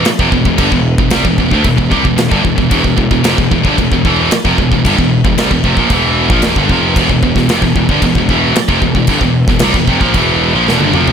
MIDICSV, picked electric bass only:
0, 0, Header, 1, 3, 480
1, 0, Start_track
1, 0, Tempo, 530973
1, 541, Time_signature, 4, 2, 24, 8
1, 10056, End_track
2, 0, Start_track
2, 0, Title_t, "Picked electric bass"
2, 0, Program_c, 0, 34
2, 174, Note_on_c, 0, 29, 98
2, 283, Note_off_c, 0, 29, 0
2, 288, Note_on_c, 0, 28, 73
2, 401, Note_off_c, 0, 28, 0
2, 407, Note_on_c, 0, 28, 83
2, 525, Note_off_c, 0, 28, 0
2, 535, Note_on_c, 0, 31, 104
2, 639, Note_off_c, 0, 31, 0
2, 644, Note_on_c, 0, 28, 91
2, 875, Note_off_c, 0, 28, 0
2, 888, Note_on_c, 0, 28, 80
2, 1003, Note_off_c, 0, 28, 0
2, 1009, Note_on_c, 0, 36, 90
2, 1114, Note_off_c, 0, 36, 0
2, 1120, Note_on_c, 0, 28, 77
2, 1241, Note_off_c, 0, 28, 0
2, 1249, Note_on_c, 0, 28, 84
2, 1359, Note_off_c, 0, 28, 0
2, 1364, Note_on_c, 0, 38, 94
2, 1481, Note_off_c, 0, 38, 0
2, 1486, Note_on_c, 0, 28, 77
2, 1605, Note_off_c, 0, 28, 0
2, 1611, Note_on_c, 0, 28, 80
2, 1722, Note_off_c, 0, 28, 0
2, 1728, Note_on_c, 0, 36, 102
2, 1845, Note_off_c, 0, 36, 0
2, 1852, Note_on_c, 0, 28, 73
2, 1968, Note_off_c, 0, 28, 0
2, 1972, Note_on_c, 0, 28, 75
2, 2088, Note_off_c, 0, 28, 0
2, 2094, Note_on_c, 0, 31, 86
2, 2206, Note_off_c, 0, 31, 0
2, 2212, Note_on_c, 0, 28, 70
2, 2328, Note_off_c, 0, 28, 0
2, 2333, Note_on_c, 0, 28, 85
2, 2448, Note_off_c, 0, 28, 0
2, 2454, Note_on_c, 0, 28, 89
2, 2569, Note_off_c, 0, 28, 0
2, 2573, Note_on_c, 0, 28, 80
2, 2688, Note_off_c, 0, 28, 0
2, 2694, Note_on_c, 0, 28, 85
2, 2806, Note_off_c, 0, 28, 0
2, 2812, Note_on_c, 0, 28, 71
2, 2925, Note_off_c, 0, 28, 0
2, 2930, Note_on_c, 0, 29, 82
2, 3047, Note_off_c, 0, 29, 0
2, 3058, Note_on_c, 0, 28, 89
2, 3171, Note_off_c, 0, 28, 0
2, 3176, Note_on_c, 0, 28, 89
2, 3290, Note_off_c, 0, 28, 0
2, 3296, Note_on_c, 0, 31, 94
2, 3410, Note_off_c, 0, 31, 0
2, 3418, Note_on_c, 0, 28, 85
2, 3531, Note_off_c, 0, 28, 0
2, 3538, Note_on_c, 0, 28, 81
2, 3651, Note_off_c, 0, 28, 0
2, 3658, Note_on_c, 0, 28, 101
2, 3883, Note_off_c, 0, 28, 0
2, 4018, Note_on_c, 0, 29, 93
2, 4131, Note_off_c, 0, 29, 0
2, 4139, Note_on_c, 0, 28, 81
2, 4251, Note_off_c, 0, 28, 0
2, 4264, Note_on_c, 0, 28, 80
2, 4374, Note_off_c, 0, 28, 0
2, 4386, Note_on_c, 0, 31, 100
2, 4495, Note_off_c, 0, 31, 0
2, 4505, Note_on_c, 0, 28, 79
2, 4726, Note_off_c, 0, 28, 0
2, 4736, Note_on_c, 0, 28, 81
2, 4850, Note_off_c, 0, 28, 0
2, 4856, Note_on_c, 0, 36, 88
2, 4970, Note_off_c, 0, 36, 0
2, 4985, Note_on_c, 0, 28, 81
2, 5095, Note_off_c, 0, 28, 0
2, 5101, Note_on_c, 0, 29, 108
2, 5212, Note_off_c, 0, 29, 0
2, 5220, Note_on_c, 0, 34, 88
2, 5329, Note_off_c, 0, 34, 0
2, 5335, Note_on_c, 0, 28, 90
2, 5672, Note_off_c, 0, 28, 0
2, 5688, Note_on_c, 0, 34, 93
2, 5805, Note_off_c, 0, 34, 0
2, 5829, Note_on_c, 0, 28, 85
2, 5923, Note_off_c, 0, 28, 0
2, 5928, Note_on_c, 0, 31, 98
2, 6045, Note_off_c, 0, 31, 0
2, 6051, Note_on_c, 0, 29, 95
2, 6278, Note_off_c, 0, 29, 0
2, 6290, Note_on_c, 0, 28, 106
2, 6406, Note_off_c, 0, 28, 0
2, 6414, Note_on_c, 0, 28, 78
2, 6528, Note_off_c, 0, 28, 0
2, 6534, Note_on_c, 0, 28, 90
2, 6641, Note_off_c, 0, 28, 0
2, 6647, Note_on_c, 0, 28, 75
2, 6756, Note_off_c, 0, 28, 0
2, 6762, Note_on_c, 0, 29, 82
2, 6877, Note_off_c, 0, 29, 0
2, 6882, Note_on_c, 0, 28, 77
2, 7002, Note_off_c, 0, 28, 0
2, 7010, Note_on_c, 0, 28, 84
2, 7126, Note_off_c, 0, 28, 0
2, 7131, Note_on_c, 0, 31, 97
2, 7239, Note_off_c, 0, 31, 0
2, 7245, Note_on_c, 0, 28, 89
2, 7363, Note_off_c, 0, 28, 0
2, 7370, Note_on_c, 0, 28, 82
2, 7486, Note_off_c, 0, 28, 0
2, 7496, Note_on_c, 0, 28, 96
2, 7720, Note_off_c, 0, 28, 0
2, 7850, Note_on_c, 0, 29, 95
2, 7965, Note_off_c, 0, 29, 0
2, 7971, Note_on_c, 0, 28, 77
2, 8079, Note_off_c, 0, 28, 0
2, 8084, Note_on_c, 0, 28, 77
2, 8202, Note_off_c, 0, 28, 0
2, 8207, Note_on_c, 0, 31, 98
2, 8322, Note_off_c, 0, 31, 0
2, 8327, Note_on_c, 0, 28, 80
2, 8555, Note_off_c, 0, 28, 0
2, 8567, Note_on_c, 0, 28, 74
2, 8672, Note_off_c, 0, 28, 0
2, 8677, Note_on_c, 0, 36, 89
2, 8798, Note_off_c, 0, 36, 0
2, 8807, Note_on_c, 0, 28, 83
2, 8917, Note_off_c, 0, 28, 0
2, 8922, Note_on_c, 0, 29, 100
2, 9041, Note_off_c, 0, 29, 0
2, 9046, Note_on_c, 0, 34, 92
2, 9163, Note_off_c, 0, 34, 0
2, 9175, Note_on_c, 0, 28, 91
2, 9511, Note_off_c, 0, 28, 0
2, 9536, Note_on_c, 0, 34, 104
2, 9646, Note_off_c, 0, 34, 0
2, 9651, Note_on_c, 0, 28, 99
2, 9765, Note_off_c, 0, 28, 0
2, 9779, Note_on_c, 0, 31, 97
2, 9890, Note_off_c, 0, 31, 0
2, 9894, Note_on_c, 0, 29, 80
2, 10056, Note_off_c, 0, 29, 0
2, 10056, End_track
3, 0, Start_track
3, 0, Title_t, "Muted picked electric bass strokes"
3, 50, Note_on_c, 9, 29, 42
3, 141, Note_off_c, 9, 29, 0
3, 3905, Note_on_c, 9, 29, 41
3, 3996, Note_off_c, 9, 29, 0
3, 7729, Note_on_c, 9, 29, 36
3, 7819, Note_off_c, 9, 29, 0
3, 10056, End_track
0, 0, End_of_file